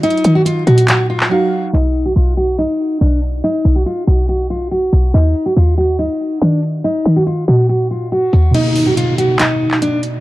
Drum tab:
CC |------------------------------------------------------------------------------------------------|------------------------------------------------------------------------------------------------|------------------------------------------------------------------------------------------------|------------------------------------------------------------------------------------------------|
HH |x---x---x---x-----------x-----------x-----x-----x-----------------------------------------------|x-----------x-----------x-----------x-----------x-----------------------x-----------x-----------|x-----------x-----------x-----------x-----------x-----------------------x-----------x-----------|x-----------x-----------x-----------x-----------x-----------------------x-----------x-----------|
CP |------------------------------------------------x-----------------x-----------------------------|------------------------------------------------------------------------------------------------|------------------------------------------------------------------------------------------------|------------------------------------------------------------------------------------------------|

CC |------------------------------------------------------------------------------------------------|x-----------------------------------------------------------------------------------------------|
HH |x-----------x-----------x-----------x--x--x--x--x-----------------------x-----------x-----------|x-----------o-----------x-----------x-----------x-----------------------x-----------x-----------|
CP |------------------------------------------------------------------------------------------------|------------------------------------------------x-----------------x-----------------------------|